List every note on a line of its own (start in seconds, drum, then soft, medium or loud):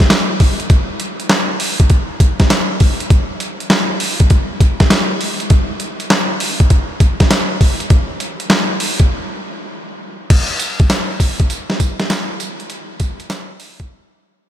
0.00 snare medium
0.10 snare loud
0.10 clap medium
0.10 closed hi-hat medium
0.40 kick loud
0.40 open hi-hat medium
0.60 closed hi-hat soft
0.70 kick loud
0.70 closed hi-hat medium
1.00 closed hi-hat medium
1.20 closed hi-hat soft
1.30 snare loud
1.30 clap medium
1.30 closed hi-hat medium
1.60 open hi-hat medium
1.80 kick medium
1.80 closed hi-hat medium
1.90 kick medium
1.90 closed hi-hat medium
2.20 kick loud
2.20 closed hi-hat medium
2.40 kick medium
2.40 snare medium
2.40 closed hi-hat soft
2.50 snare loud
2.50 clap medium
2.50 closed hi-hat medium
2.80 kick loud
2.80 open hi-hat medium
3.00 closed hi-hat soft
3.10 kick loud
3.10 closed hi-hat medium
3.40 closed hi-hat medium
3.60 closed hi-hat soft
3.70 snare loud
3.70 clap medium
3.70 closed hi-hat medium
4.00 open hi-hat medium
4.20 kick medium
4.20 closed hi-hat medium
4.30 kick medium
4.30 closed hi-hat medium
4.60 kick loud
4.60 closed hi-hat medium
4.80 kick loud
4.80 snare medium
4.80 closed hi-hat medium
4.90 snare loud
4.90 clap medium
4.90 closed hi-hat medium
5.21 open hi-hat medium
5.40 closed hi-hat soft
5.50 kick loud
5.50 closed hi-hat medium
5.80 closed hi-hat medium
6.00 closed hi-hat soft
6.10 snare loud
6.10 clap medium
6.10 closed hi-hat medium
6.40 open hi-hat medium
6.60 kick medium
6.60 closed hi-hat medium
6.70 kick medium
6.70 closed hi-hat medium
7.00 kick medium
7.00 closed hi-hat medium
7.20 kick medium
7.20 snare medium
7.20 closed hi-hat soft
7.31 snare loud
7.31 clap medium
7.31 closed hi-hat medium
7.61 kick loud
7.61 open hi-hat medium
7.80 closed hi-hat soft
7.90 kick loud
7.90 closed hi-hat medium
8.20 closed hi-hat medium
8.40 closed hi-hat soft
8.50 snare loud
8.50 clap medium
8.50 closed hi-hat medium
8.80 open hi-hat medium
9.00 kick medium
9.00 closed hi-hat medium
10.30 kick loud
10.30 closed hi-hat medium
10.30 crash loud
10.60 closed hi-hat medium
10.60 tambourine medium
10.80 kick loud
10.80 closed hi-hat soft
10.90 snare loud
10.90 clap medium
10.90 closed hi-hat medium
10.90 tambourine medium
11.20 kick medium
11.20 open hi-hat medium
11.20 tambourine medium
11.40 kick loud
11.40 closed hi-hat medium
11.50 closed hi-hat medium
11.50 tambourine medium
11.70 snare medium
11.80 kick medium
11.80 closed hi-hat medium
11.80 tambourine medium
12.00 snare medium
12.00 closed hi-hat medium
12.10 snare loud
12.10 clap loud
12.10 closed hi-hat medium
12.10 tambourine loud
12.40 closed hi-hat medium
12.40 tambourine medium
12.60 closed hi-hat soft
12.70 closed hi-hat medium
13.00 kick loud
13.00 closed hi-hat medium
13.00 tambourine medium
13.20 closed hi-hat soft
13.30 snare loud
13.30 clap medium
13.30 closed hi-hat medium
13.30 tambourine medium
13.60 open hi-hat medium
13.60 tambourine medium
13.80 kick medium
13.80 closed hi-hat medium